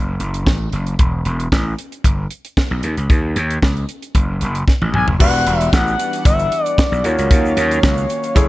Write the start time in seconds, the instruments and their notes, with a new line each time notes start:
Already playing: slap bass F#1
0.20 slap bass F#1, closed hi-hat
0.34 closed hi-hat
0.46 slap bass A1, kick, snare
0.73 slap bass F#1, closed hi-hat
0.87 closed hi-hat
0.99 slap bass E1, kick, closed hi-hat
1.25 slap bass E1, closed hi-hat
1.40 closed hi-hat
1.52 slap bass A1, kick, snare
1.79 closed hi-hat
1.92 closed hi-hat
2.04 slap bass G1, kick, closed hi-hat
2.31 closed hi-hat
2.45 closed hi-hat
2.57 kick, snare
2.71 slap bass B1
2.83 slap bass D#2, closed hi-hat
2.97 slap bass C#2, closed hi-hat
3.10 slap bass D#2, kick, closed hi-hat
3.36 slap bass D#2, closed hi-hat
3.51 closed hi-hat
3.62 slap bass C#2, kick, snare
3.77 closed hi-hat
3.89 closed hi-hat
4.02 closed hi-hat
4.15 slap bass F#1, kick, closed hi-hat
4.41 slap bass F#1, closed hi-hat
4.55 closed hi-hat
4.68 kick, snare
4.82 slap bass A1, high tom
4.94 slap bass B1, analog synth lead G#5, mid tom
5.08 slap bass F#1, floor tom
5.19 slap bass E1, analog synth pad E3 G3 B3 D4 F#5, grand piano F#4 G4 B4 D5, analog synth lead F#5, kick, crash, shaker
5.35 shaker
5.46 slap bass E1, closed hi-hat, shaker
5.61 closed hi-hat, shaker
5.73 slap bass A1, analog synth lead F#5, kick, snare, shaker
5.87 shaker
5.99 closed hi-hat, shaker
6.13 closed hi-hat, shaker
6.25 slap bass G1, analog synth lead E5, kick, closed hi-hat, shaker
6.39 closed hi-hat, shaker
6.52 closed hi-hat
6.65 analog synth lead D5, closed hi-hat, shaker
6.78 analog synth lead D5, kick, snare, shaker
6.92 slap bass B1, shaker
7.03 slap bass D#2, analog synth pad D#3 F#3 A#3 C#4 F5, grand piano F4 F#4 A#4 C#5, analog synth lead C#5, closed hi-hat, shaker
7.18 slap bass C#2, closed hi-hat, shaker
7.31 slap bass D#2, kick, closed hi-hat, shaker
7.46 shaker
7.57 slap bass D#2, closed hi-hat, shaker
7.71 closed hi-hat, shaker
7.83 slap bass C#2, kick, snare, shaker
7.97 shaker
8.10 closed hi-hat, shaker
8.23 closed hi-hat, shaker
8.35 slap bass F#1, analog synth pad E3 F#3 A3 F#5, grand piano E4 G#4 A4 C#5, kick, closed hi-hat, shaker